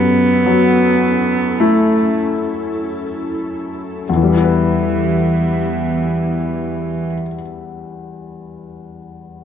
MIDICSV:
0, 0, Header, 1, 4, 480
1, 0, Start_track
1, 0, Tempo, 1134216
1, 673, Tempo, 1209677
1, 1153, Tempo, 1279318
1, 1632, Time_signature, 4, 2, 24, 8
1, 1633, Tempo, 1219512
1, 3743, End_track
2, 0, Start_track
2, 0, Title_t, "Ambient pad"
2, 0, Program_c, 0, 92
2, 0, Note_on_c, 0, 61, 53
2, 0, Note_on_c, 0, 64, 54
2, 0, Note_on_c, 0, 69, 53
2, 1619, Note_off_c, 0, 64, 0
2, 1633, Note_off_c, 0, 61, 0
2, 1633, Note_on_c, 0, 67, 48
2, 1634, Note_off_c, 0, 69, 0
2, 1634, Note_on_c, 0, 59, 50
2, 1634, Note_on_c, 0, 64, 47
2, 2804, Note_off_c, 0, 67, 0
2, 2805, Note_off_c, 0, 59, 0
2, 2805, Note_off_c, 0, 64, 0
2, 3743, End_track
3, 0, Start_track
3, 0, Title_t, "Cello"
3, 0, Program_c, 1, 42
3, 0, Note_on_c, 1, 59, 73
3, 677, Note_on_c, 1, 57, 52
3, 683, Note_off_c, 1, 59, 0
3, 911, Note_off_c, 1, 57, 0
3, 1636, Note_on_c, 1, 52, 40
3, 2808, Note_off_c, 1, 52, 0
3, 3743, End_track
4, 0, Start_track
4, 0, Title_t, "Grand piano"
4, 0, Program_c, 2, 0
4, 0, Control_c, 2, 64, 127
4, 0, Note_on_c, 2, 42, 47
4, 196, Note_on_c, 2, 54, 37
4, 677, Note_on_c, 2, 57, 35
4, 678, Note_on_c, 2, 64, 38
4, 960, Note_off_c, 2, 54, 0
4, 1617, Note_off_c, 2, 42, 0
4, 1619, Note_off_c, 2, 57, 0
4, 1619, Note_off_c, 2, 64, 0
4, 1637, Note_on_c, 2, 40, 29
4, 1641, Control_c, 2, 64, 0
4, 1665, Note_on_c, 2, 52, 27
4, 1693, Note_on_c, 2, 55, 28
4, 1720, Note_on_c, 2, 59, 31
4, 1723, Control_c, 2, 64, 127
4, 1745, Note_on_c, 2, 64, 30
4, 1775, Note_on_c, 2, 71, 29
4, 2809, Note_off_c, 2, 40, 0
4, 2836, Note_off_c, 2, 52, 0
4, 2864, Note_off_c, 2, 55, 0
4, 2891, Note_off_c, 2, 59, 0
4, 2916, Note_off_c, 2, 64, 0
4, 2946, Note_off_c, 2, 71, 0
4, 3743, End_track
0, 0, End_of_file